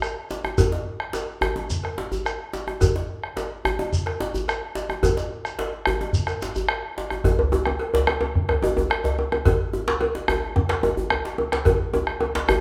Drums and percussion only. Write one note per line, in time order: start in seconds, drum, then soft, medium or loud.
0.02 bombo rim medium
0.02 cowbell soft
0.02 djembe slap soft
0.02 shekere soft
0.30 djembe slap medium
0.30 shekere soft
0.44 bombo rim medium
0.44 djembe tone medium
0.58 bombo rim soft
0.58 bombo low medium
0.58 cowbell medium
0.58 djembe bass medium
0.58 shekere medium
0.72 djembe slap medium
1.00 bombo rim medium
1.13 cowbell soft
1.13 djembe slap medium
1.13 shekere soft
1.41 bombo rim medium
1.41 cowbell soft
1.41 djembe bass medium
1.56 djembe slap soft
1.56 djembe tone soft
1.70 bombo rim soft
1.70 bombo low medium
1.70 shekere medium
1.83 bombo rim medium
1.83 cowbell soft
1.98 djembe slap medium
2.12 djembe bass medium
2.12 shekere soft
2.26 bombo rim medium
2.26 cowbell soft
2.26 djembe slap soft
2.26 shekere soft
2.53 djembe slap medium
2.53 shekere soft
2.67 bombo rim medium
2.67 djembe tone medium
2.81 bombo rim soft
2.81 bombo low medium
2.81 cowbell medium
2.81 djembe bass medium
2.81 shekere medium
2.96 djembe slap medium
3.24 bombo rim medium
3.36 cowbell soft
3.36 djembe slap medium
3.36 shekere soft
3.65 bombo rim medium
3.65 djembe bass medium
3.79 djembe slap medium
3.79 djembe tone medium
3.93 bombo rim soft
3.93 bombo low medium
3.93 shekere medium
4.06 bombo rim medium
4.06 cowbell soft
4.20 djembe slap medium
4.34 djembe bass medium
4.34 shekere soft
4.48 bombo rim medium
4.48 cowbell soft
4.48 djembe slap soft
4.48 shekere soft
4.75 djembe slap medium
4.75 shekere soft
4.89 bombo rim medium
4.89 djembe tone medium
5.03 bombo rim soft
5.03 bombo low medium
5.03 cowbell medium
5.03 djembe bass medium
5.03 shekere soft
5.17 djembe slap medium
5.17 shekere soft
5.45 bombo rim medium
5.45 djembe slap soft
5.45 shekere soft
5.59 cowbell medium
5.59 djembe slap medium
5.73 bombo rim soft
5.73 djembe slap soft
5.86 bombo rim loud
5.86 cowbell soft
5.86 djembe bass medium
6.01 djembe slap medium
6.01 djembe tone medium
6.13 bombo low medium
6.13 shekere medium
6.27 bombo rim medium
6.27 cowbell soft
6.27 shekere soft
6.41 bombo rim soft
6.41 djembe slap medium
6.41 shekere soft
6.55 bombo rim soft
6.55 djembe bass medium
6.55 shekere soft
6.69 bombo rim loud
6.69 cowbell soft
6.97 bombo rim soft
6.97 djembe slap medium
7.10 bombo rim medium
7.10 djembe tone medium
7.24 bombo low medium
7.24 cowbell medium
7.24 djembe slap soft
7.24 djembe bass medium
7.39 djembe bass medium
7.52 djembe slap soft
7.52 djembe tone medium
7.66 bombo rim medium
7.66 djembe slap soft
7.66 djembe tone medium
7.79 cowbell medium
7.79 djembe slap soft
7.94 djembe slap medium
7.94 djembe bass medium
8.07 bombo rim loud
8.07 cowbell medium
8.07 djembe tone medium
8.21 djembe slap soft
8.21 djembe tone loud
8.35 bombo rim soft
8.35 bombo low loud
8.49 bombo rim medium
8.49 cowbell medium
8.49 djembe bass medium
8.62 djembe tone medium
8.77 djembe tone medium
8.77 djembe bass medium
8.90 bombo rim loud
8.90 cowbell medium
9.04 djembe slap medium
9.04 djembe bass medium
9.19 djembe tone medium
9.32 bombo rim medium
9.32 djembe tone medium
9.45 bombo low loud
9.45 cowbell medium
9.45 djembe slap soft
9.45 djembe bass medium
9.73 djembe slap soft
9.73 djembe tone medium
9.87 djembe slap soft
9.87 djembe slap loud
10.00 cowbell medium
10.00 djembe slap soft
10.00 djembe tone medium
10.15 djembe slap medium
10.28 bombo rim loud
10.28 cowbell medium
10.28 djembe tone medium
10.28 djembe bass medium
10.43 djembe slap soft
10.56 bombo rim soft
10.56 bombo low loud
10.56 djembe tone medium
10.69 bombo rim medium
10.69 cowbell medium
10.69 djembe slap loud
10.83 djembe tone medium
10.97 djembe bass medium
11.10 bombo rim loud
11.10 cowbell soft
11.10 djembe tone medium
11.25 djembe slap medium
11.38 djembe tone medium
11.52 bombo rim medium
11.52 djembe slap loud
11.65 bombo low loud
11.65 cowbell medium
11.65 djembe slap soft
11.65 djembe tone medium
11.65 djembe bass medium
11.94 djembe slap soft
11.94 djembe tone loud
11.94 djembe tone medium
12.07 bombo rim medium
12.07 djembe slap soft
12.20 cowbell medium
12.20 djembe slap soft
12.20 djembe tone medium
12.35 djembe slap loud
12.35 djembe slap medium
12.48 bombo rim loud
12.48 cowbell medium
12.48 djembe tone medium
12.48 djembe bass medium